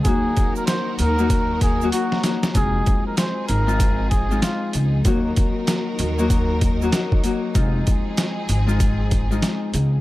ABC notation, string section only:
X:1
M:4/4
L:1/8
Q:"Swing 16ths" 1/4=96
K:Ebdor
V:1 name="String section"
[E,EGB]8 | [F,CEA]8 | [E,GB]8 | [F,CA]8 |]